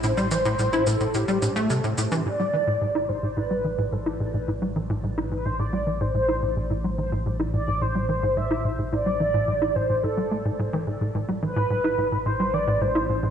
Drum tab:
SH |xxxxxxxxxxxxxxxx|----------------|----------------|----------------|
CG |o----o----o----o|----------------|----------------|----------------|

SH |----------------|----------------|
CG |----------------|----------------|